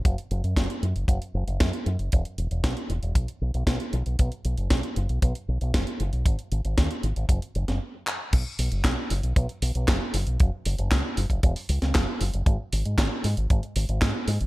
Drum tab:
CC |----------------|----------------|----------------|----------------|
HH |xxxxxxxxxx-xxxxx|xxxxxxxxxx-xxxxx|xxxxxxxxxx-xxxxx|xxxxxxxxxxxx----|
CP |----------------|----------------|----------------|--------------x-|
SD |----o-------o---|----o-------o---|----o-------o---|----o------o----|
BD |o---o---o---o---|o---o---o---o---|o---o---o---o---|o---o---o-------|

CC |x---------------|----------------|----------------|
HH |x-oxx-oxxxoxx-ox|x-oxx-oxxooxx-ox|x-oxx-oxxxoxx-ox|
CP |----x-------x---|----x-------x---|----x-------x---|
SD |----o-------o---|----o------oo---|----o-------o---|
BD |o---o---o---o---|o---o--oo---o---|o---o---o---o---|